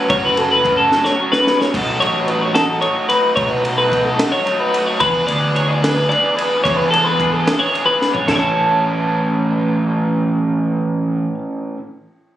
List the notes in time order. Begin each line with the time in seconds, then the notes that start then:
Already playing: F#4
0.08 F#1 F#3 A3 C#4 F#4 C#5, kick, ride
0.25 B4
0.35 A3 C#4 F#4 A4, ride
0.51 B4
0.63 F#3 A3 C#4 F#4, kick, ride
0.77 A4
0.90 A3 C#4 F#4, snare
1.04 C#5, snare
1.17 F#3 A3 C#4 F#4
1.32 B4, snare
1.45 A3 C#4 F#4, snare
1.60 C#5, snare
1.72 B1 B2 F#3 A3 D#4 F#4 A4, kick, crash, ride
2.00 A1 A3 D#4 F#4 C#5, ride
2.26 F#3 A3 D#4 F#4 B4, ride
2.41 C#5
2.54 A3 D#4 F#4 A4, snare, ride
2.80 F#3 A3 D#4 F#4 C#5, ride
3.07 A3 D#4 F#4 B4, ride
3.34 B1 B2 F#3 A3 D#4 F#4 C#5, kick, ride
3.49 B4
3.63 A3 D#4 F#4 A4, ride
3.78 B4
3.90 F#3 A3 D#4 F#4, kick, ride
4.04 A4
4.19 A3 D#4 F#4, snare, ride
4.32 C#5
4.45 F#3 A3 D#4 F#4, ride
4.60 B4
4.72 A3 D#4 F#4, ride
4.87 C#5
5.00 E2 E3 B3 D4 G#4 B4, kick, ride
5.26 D2 B3 D4 G#4 D5, ride
5.54 E3 B3 D4 G#4 C#5, ride
5.68 D5
5.82 B3 D4 G#4 B4, snare, ride
6.09 E3 B3 D4 G#4 D5, ride
6.35 D4 G#4 B4, ride
6.40 B3
6.64 E2 E3 B3 D4 G#4 C#5, kick, ride
6.77 B4
6.91 B3 D4 G#4 A4, ride
7.04 B4
7.18 E3 B3 D4 G#4, kick, ride
7.31 A4
7.44 B3 D4 G#4, snare, ride
7.59 C#5
7.72 E3 B3 D4 G#4, ride
7.86 B4
7.98 B3 D4 G#4, snare
8.14 C#5, floor tom
8.25 A1 A2 E3 A3 C#4 A4, kick, snare, china
8.30 E4 C#5
8.36 E5 A5